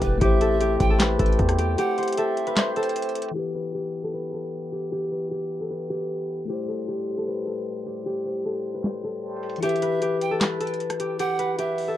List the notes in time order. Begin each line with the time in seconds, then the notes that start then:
Already playing: E3 B3 E4 G4 A4 B4
0.02 E1 B4, kick, closed hi-hat
0.18 A1 A3 C4 E4 G4 E5, kick, closed hi-hat
0.23 G4 C5
0.41 A4, closed hi-hat
0.61 G4, closed hi-hat
0.80 A1 G5, kick, closed hi-hat
0.90 A4
1.00 B4, snare, clap, closed hi-hat
1.19 A1 A4, kick, closed hi-hat
1.26 closed hi-hat
1.32 closed hi-hat
1.39 E2, kick, closed hi-hat
1.49 cross-stick, closed hi-hat
1.59 G4, closed hi-hat
1.78 G4 F#5, closed hi-hat
1.98 C5, closed hi-hat
2.03 closed hi-hat
2.08 closed hi-hat
2.13 closed hi-hat
2.17 A4 E5, closed hi-hat
2.37 closed hi-hat
2.47 B4, closed hi-hat
2.57 C5, snare, clap, closed hi-hat
2.76 A4 C5, closed hi-hat
2.83 closed hi-hat
2.89 closed hi-hat
2.96 closed hi-hat
3.02 closed hi-hat
3.09 closed hi-hat
3.15 closed hi-hat
3.22 closed hi-hat
3.29 E3, closed hi-hat
3.34 E3 B3 E4 G4, closed hi-hat
3.39 B4, closed hi-hat
3.48 closed hi-hat
3.55 B4, closed hi-hat
3.74 G4, closed hi-hat
3.94 closed hi-hat
4.04 A4
4.13 B4, closed hi-hat
4.33 A4, closed hi-hat
4.40 closed hi-hat
4.46 closed hi-hat
4.53 closed hi-hat
4.62 closed hi-hat
4.72 G4, closed hi-hat
4.92 G4, closed hi-hat
5.12 B4, closed hi-hat
5.31 G4, closed hi-hat
5.51 closed hi-hat
5.60 A4
5.70 B4, closed hi-hat
5.90 G4, closed hi-hat
5.96 closed hi-hat
6.03 closed hi-hat
6.10 closed hi-hat
6.16 closed hi-hat
6.23 closed hi-hat
6.29 closed hi-hat
6.45 A2 G3 A3 E4 G4 C5, closed hi-hat
6.50 G4 C5
6.68 A4, closed hi-hat
6.88 G4, closed hi-hat
7.08 closed hi-hat
7.18 A4
7.27 B4, closed hi-hat
7.47 A4, closed hi-hat
7.53 closed hi-hat
7.60 closed hi-hat
7.66 closed hi-hat
7.76 closed hi-hat
7.86 G4, closed hi-hat
8.06 G4, closed hi-hat
8.25 C5, closed hi-hat
8.30 closed hi-hat
8.35 closed hi-hat
8.40 closed hi-hat
8.45 A4, closed hi-hat
8.64 closed hi-hat
8.74 B4, closed hi-hat
8.84 C5, snare, clap
9.04 A4, closed hi-hat
9.10 closed hi-hat
9.17 closed hi-hat
9.23 closed hi-hat
9.30 closed hi-hat
9.36 closed hi-hat
9.43 closed hi-hat
9.49 closed hi-hat
9.56 E3, closed hi-hat
9.61 E4 G4 E5, closed hi-hat
9.66 B4, closed hi-hat
9.76 closed hi-hat
9.82 B4, closed hi-hat
10.02 G4, closed hi-hat
10.21 G5, closed hi-hat
10.31 A4
10.41 B4, snare, clap, closed hi-hat
10.60 A4, closed hi-hat
10.67 closed hi-hat
10.74 closed hi-hat
10.80 closed hi-hat
10.90 cross-stick, closed hi-hat
11.00 G4, closed hi-hat
11.19 G4 F#5, closed hi-hat
11.39 B4, closed hi-hat
11.58 G4 E5, closed hi-hat
11.78 open hi-hat
11.88 A4